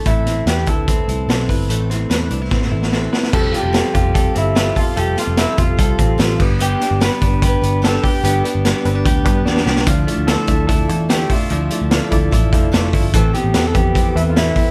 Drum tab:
CC |----------------|----------------|x---------------|--------------x-|
HH |x-x-x-x-x-x-x-o-|x-x-x-x---------|--x-x-x-x-x-x-o-|x-x-x-x-x-x-x---|
SD |--o-o-------o---|--o-o---oo-oo-oo|----o-------o---|--o-o-------o---|
BD |o-----o-o-----o-|--------o-------|o-----o-o-----o-|------o-o-o---o-|

CC |----------------|----------------|----------------|----------------|
HH |x-x-x-x-x-x-x-o-|x-x-x-x-x-x-----|x-x-x-x-x-x-x-o-|x-x-x-x-x-x-x-o-|
SD |--o-o-------o---|----o-------oooo|----o-------o---|----o-------o---|
BD |------o-o-----o-|--------o-o-----|o-----o-o-----o-|------o-o-o---o-|

CC |----------------|
HH |x-x-x-x-x-x-x-o-|
SD |----o-------o---|
BD |o-----o-o-----o-|